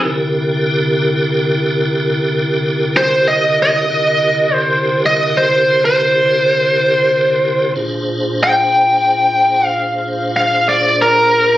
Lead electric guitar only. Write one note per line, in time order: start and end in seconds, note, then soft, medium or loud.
2.97 3.26 C5 loud
3.28 3.58 D#5 loud
3.62 4.54 D#5 loud
4.54 5.01 C5 loud
5.06 5.36 D#5 loud
5.37 5.83 C5 medium
5.85 7.73 C5 loud
8.44 9.66 G5 loud
9.66 10.31 F5 loud
10.36 10.66 F5 loud
10.69 10.98 D5 medium
11.02 11.58 A#4 loud